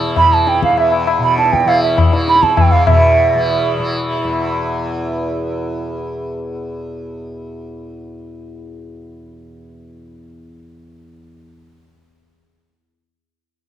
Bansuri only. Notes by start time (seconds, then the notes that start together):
0.18 B5
0.33 A5
0.48 G5
0.64 F5
0.79 E5
1.23 B5
1.38 A5
1.53 G5
1.68 F5
1.83 E5
2.29 B5
2.43 A5
2.57 G5
2.72 F5
2.87 E5